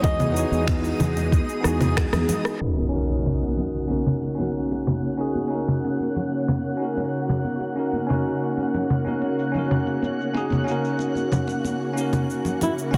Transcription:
Already playing: E3 G#3 D#4 D#5 D#6
0.02 E2 B3 D#4 F#4 G#4 D#5, kick, muted conga, cabasa
0.20 high conga, low conga, cabasa
0.32 B3 D#4
0.36 F#4 G#4, cabasa
0.51 E2, cabasa
0.68 finger snap, kick, muted conga, cabasa
0.84 high conga, cabasa
1.00 E2, low conga, cabasa
1.17 muted conga, cabasa
1.32 kick, high conga, cabasa
1.49 cabasa
1.61 B3 D#4, cross-stick
1.65 E2 F#4 G#4, cabasa
1.81 muted conga, high conga, low conga, cabasa
1.97 finger snap, kick, cross-stick, cabasa
2.13 E2, cross-stick, low conga, cabasa
2.29 muted conga, high conga, low conga, cabasa
2.45 cross-stick, cabasa
2.59 C#3 A#3 C#4 D#4 F#4 A#4 F#5 F#6, impact
2.77 high conga
2.89 C#4 D#4
2.94 F#4 A#4, cabasa
3.08 muted conga, cabasa
3.26 low conga, cabasa
3.42 high conga, cabasa
3.57 muted conga, low conga, cabasa
3.75 cabasa
3.88 C#4 D#4 F#4 A#4, high conga, cabasa
4.06 low conga
4.22 muted conga, cabasa
4.35 C#4 D#4, high conga
4.39 F#4 A#4, low conga, cabasa
4.55 cabasa
4.72 muted conga
4.87 high conga, low conga, cabasa
5.04 cabasa
5.17 C#4 D#4 F#4 G#4, cabasa
5.35 muted conga, high conga
5.48 C#4 D#4
5.52 F#4 A#4, cabasa
5.68 low conga, cabasa
5.84 muted conga, cabasa
6.00 high conga, cabasa
6.16 low conga, cabasa
6.33 cabasa
6.48 muted conga, high conga, low conga, cabasa
6.77 C#4 D#4
6.82 F#4 A#4, cabasa
6.97 muted conga, high conga, cabasa
7.13 cabasa
7.29 low conga
7.44 high conga, cabasa
7.61 muted conga, cabasa
7.76 C#4 D#4 F#4 A#4, cabasa
7.93 high conga
8.07 C#4 D#4, muted conga, low conga, cabasa
8.11 F#4 A#4
8.27 cabasa
8.43 cabasa
8.57 high conga, cabasa
8.74 muted conga, low conga, cabasa
8.90 low conga, cabasa
9.05 C#4 D#4 F#4 A#4, high conga, cabasa
9.22 muted conga
9.39 cabasa
9.52 C#4 D#4, high conga, low conga, cabasa
9.56 F#4 A#4
9.71 low conga, cabasa
9.87 muted conga
10.03 high conga, cabasa
10.21 cabasa
10.34 C#4 D#4 F#4 G#4, muted conga, cabasa
10.50 high conga, low conga, cabasa
10.64 C#4 D#4, cabasa
10.69 F#4 A#4
10.85 cabasa
10.99 muted conga, cabasa
11.15 high conga, cabasa
11.32 low conga, cabasa
11.48 muted conga, cabasa
11.64 high conga, cabasa
11.93 C#4 D#4
11.97 F#4 A#4, cabasa
12.13 muted conga, high conga, low conga, cabasa
12.30 cabasa
12.45 low conga, cabasa
12.61 E4, muted conga, high conga, low conga, cabasa
12.78 cabasa
12.91 D#2 D#3 C#4 D#4 F#4 A#4, kick, cabasa

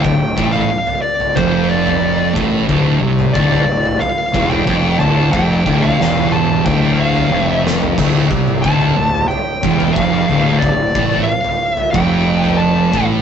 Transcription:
0.02 D1 D2 G5, kick, floor tom
0.37 A1 A2, kick
0.52 F5, floor tom, mid tom
0.87 floor tom
1.02 D5
1.20 floor tom
1.35 F1 F2 C5, kick, floor tom
1.69 D5
1.87 floor tom
2.35 A1 A2, kick, floor tom
2.67 D1 D2, kick, floor tom
3.01 C2 C3
3.19 floor tom, mid tom
3.33 D1 D2 D5, kick
3.52 floor tom
3.66 D1 D2
3.86 floor tom
4.00 F5, floor tom
4.33 E1 E2, kick
4.49 G5, floor tom
4.66 F1 F2, kick
4.99 D1 D2 A5, floor tom
5.32 F1 F2 G5, kick, floor tom
5.66 D1 D2, kick, floor tom
5.82 F5, floor tom
5.99 E1 E2, snare
6.16 floor tom
6.32 A5, mid tom
6.49 floor tom
6.65 D1 D2 G5, kick, floor tom
6.99 F5
7.15 floor tom
7.30 F1 F2, high tom
7.43 E5
7.67 snare
7.82 floor tom
7.97 D1 D2, kick, floor tom, crash
8.30 C2 C3, kick
8.48 floor tom, mid tom
8.62 D1 D2 A5, kick
8.81 floor tom
8.95 D1 D2
9.14 floor tom
9.28 G5, floor tom
9.63 E1 E2, kick
9.80 floor tom
9.93 F1 F2 F5, kick
10.29 D1 D2, floor tom
10.58 D5
10.62 D1 D2, kick, floor tom
10.95 A1 A2, kick
11.12 floor tom, mid tom
11.23 F5
11.44 floor tom
11.73 E5, floor tom
11.91 F1 F2 G5, kick, floor tom
12.44 floor tom
12.58 A5
12.92 A1 A2, kick, floor tom

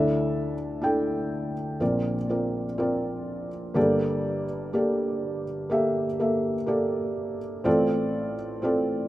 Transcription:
Already playing: D2 D3 D4 E4 A4 E5
0.81 D4 E4 A4 G5
1.80 A#1 A#2 C4 F4 A#4 D5
2.29 C4 F4 A#4 D5
2.78 C4 F4 A#4 D5
3.74 G1 G2 A#3 G4 A4 D5
4.73 A#3 G4 A4 D5
5.70 A#3 G4 A4 E5
6.19 A#3 G4 A4 E5
6.66 A#3 G4 A4 D5
7.64 A1 A2 C4 F4 A4 D5
8.62 C4 F4 A4 D5

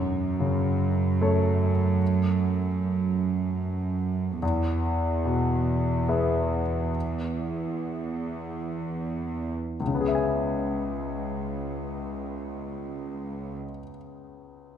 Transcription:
Already playing: F#2
0.40 C#3
1.21 A3 A4 C#5
4.42 E2
5.25 B2
6.09 B3 G#4 E5
9.80 C#2
9.87 C#3
9.94 B3
10.01 G#4
10.08 E5
10.15 G#5

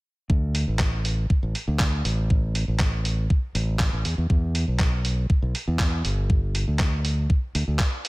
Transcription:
0.30 D2, kick
0.55 open hi-hat
0.68 A1
0.79 kick, clap
1.05 open hi-hat
1.30 kick
1.43 A1
1.55 open hi-hat
1.68 D2
1.80 kick, clap
2.05 A1, open hi-hat
2.30 kick
2.55 open hi-hat
2.68 A1
2.80 kick, clap
3.05 open hi-hat
3.30 kick
3.55 A1, open hi-hat
3.79 kick, clap
3.93 A1
4.05 E2, open hi-hat
4.18 E2
4.30 E2, kick
4.55 open hi-hat
4.68 B1
4.80 kick, clap
5.05 open hi-hat
5.30 kick
5.42 B1
5.55 open hi-hat
5.67 E2
5.79 kick, clap
6.05 G1, open hi-hat
6.30 kick
6.55 open hi-hat
6.68 D2
6.79 kick, clap
7.05 open hi-hat
7.30 kick
7.55 D2, open hi-hat
7.68 D2
7.79 kick, clap
8.05 open hi-hat

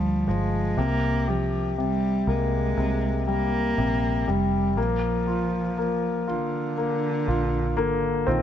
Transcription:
Already playing: D2 F3 G3
0.27 G1 F3 G#3
0.77 C2 C3 A#3
1.28 F3 G4
1.78 C3 G3
2.27 C2 G#3 A#3
2.77 C2 C3
3.27 G3 A#3
3.78 A#1 C3
4.28 F1 G3
4.77 A#1 F3 A#3
5.27 F4
5.78 A#3
6.28 D3 F4
6.78 A#3
7.27 A#1 F4
7.77 G#1 D3 A#3
8.27 A#1 D#3 C4 F4

